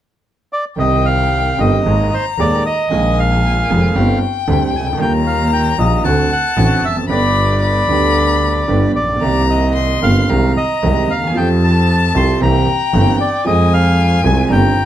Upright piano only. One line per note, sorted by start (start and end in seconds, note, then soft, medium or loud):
0.76 1.55 C2 medium
0.76 1.55 C3 medium
0.76 1.54 D#3 medium
0.76 1.54 G3 medium
0.76 1.55 C4 soft
0.80 1.56 G4 medium
1.58 1.81 G1 medium
1.58 1.81 G2 medium
1.58 1.81 D#3 medium
1.58 1.81 G3 medium
1.58 1.81 C4 medium
1.58 1.81 G4 medium
1.86 2.08 G#1 medium
1.86 2.08 G#2 medium
1.86 2.08 D#3 medium
1.86 2.08 G#3 medium
1.86 2.08 A#3 medium
1.86 2.08 G#4 medium
2.39 2.61 D#1 medium
2.39 2.61 D#2 medium
2.39 2.61 D#3 medium
2.39 2.61 G#3 medium
2.39 2.61 A#3 medium
2.39 2.61 G#4 medium
2.90 3.66 A#1 medium
2.90 3.66 A#2 medium
2.90 3.65 D#3 medium
2.90 3.66 G#3 medium
2.90 3.66 A#3 medium
2.90 3.67 F4 medium
3.69 3.92 F1 medium
3.69 3.92 F2 medium
3.69 3.91 D#3 medium
3.69 3.91 G#3 medium
3.69 3.92 A#3 medium
3.69 3.92 F4 medium
3.95 4.18 G1 medium
3.95 4.17 G2 medium
3.95 4.17 D3 medium
3.95 4.18 G3 medium
3.95 4.18 C4 medium
3.95 4.18 G4 medium
4.48 4.70 D2 medium
4.48 4.70 D3 medium
4.48 4.70 G3 medium
4.48 4.70 C4 medium
4.48 4.70 G4 medium
4.81 4.87 C2 medium
4.87 4.93 C#2 medium
4.93 5.00 D2 medium
4.97 5.74 D#2 medium
4.97 5.74 D#3 medium
4.97 5.74 G3 medium
4.97 5.74 A#3 medium
4.97 5.75 F4 medium
5.78 6.00 A#1 medium
5.78 6.00 A#2 medium
5.78 6.00 D#3 medium
5.78 6.00 G3 medium
5.78 6.00 A#3 medium
5.78 6.01 F4 medium
6.04 6.26 D2 medium
6.04 6.26 D3 medium
6.04 6.26 A3 medium
6.04 6.26 C4 medium
6.04 6.26 F#4 medium
6.57 6.79 A1 medium
6.57 6.79 A2 medium
6.57 6.79 D3 medium
6.57 6.79 A3 medium
6.57 6.79 C4 medium
6.57 6.79 F#4 medium
6.90 6.96 E2 soft
6.97 7.03 F2 medium
7.03 7.09 F#2 medium
7.08 7.85 G1 medium
7.08 7.85 G2 medium
7.08 7.84 D3 medium
7.08 7.85 G3 medium
7.08 7.85 B3 medium
7.12 7.86 G4 medium
7.89 8.65 D2 medium
7.89 8.65 D3 medium
7.89 8.64 G3 medium
7.89 8.65 B3 medium
7.89 8.66 G4 medium
8.68 8.91 G1 medium
8.68 8.91 G2 medium
8.68 8.91 D3 medium
8.68 8.91 G3 medium
8.68 8.91 B3 medium
8.68 8.91 G4 medium
9.02 9.09 A1 soft
9.09 9.16 A#1 medium
9.16 9.22 B1 medium
9.20 9.99 C2 medium
9.20 9.99 C3 medium
9.20 9.98 D#3 medium
9.20 9.99 A#3 soft
9.20 9.99 C4 medium
9.25 10.00 G4 medium
10.02 10.25 G1 medium
10.02 10.25 G2 medium
10.02 10.25 D#3 medium
10.02 10.25 A#3 soft
10.02 10.25 C4 medium
10.02 10.25 G4 medium
10.29 10.52 C2 medium
10.29 10.52 C3 medium
10.29 10.52 D#3 medium
10.29 10.52 G#3 medium
10.29 10.52 C4 medium
10.29 10.52 G4 medium
10.82 11.05 C2 medium
10.82 11.05 C3 medium
10.82 11.05 D#3 medium
10.82 11.05 G#3 medium
10.82 11.05 C4 medium
10.82 11.06 G4 medium
11.16 11.23 D2 soft
11.23 11.30 D#2 medium
11.30 11.36 E2 medium
11.34 12.11 F2 medium
11.34 12.11 F3 medium
11.34 12.11 A3 medium
11.34 12.12 C4 medium
11.34 12.12 G4 medium
12.15 12.37 C2 medium
12.15 12.37 C3 medium
12.15 12.37 F3 medium
12.15 12.37 A3 medium
12.15 12.37 C4 medium
12.15 12.37 G4 medium
12.41 12.63 C2 medium
12.41 12.64 C3 medium
12.41 12.63 E3 medium
12.41 12.63 A#3 medium
12.41 12.63 C4 medium
12.41 12.64 G4 medium
12.93 13.16 G1 medium
12.93 13.16 G2 medium
12.93 13.16 E3 medium
12.93 13.16 A#3 medium
12.93 13.16 C4 medium
12.93 13.16 G4 medium
13.45 14.21 F2 medium
13.45 14.21 F3 medium
13.45 14.20 G#3 medium
13.45 14.21 C4 medium
13.45 14.22 G#4 medium
14.24 14.46 C2 medium
14.24 14.46 C3 medium
14.24 14.46 F3 medium
14.24 14.46 G#3 medium
14.24 14.46 C4 medium
14.24 14.46 G#4 medium
14.50 14.72 G1 medium
14.50 14.72 G2 medium
14.50 14.72 D#3 medium
14.50 14.72 G3 medium
14.50 14.72 C4 medium
14.50 14.73 G4 medium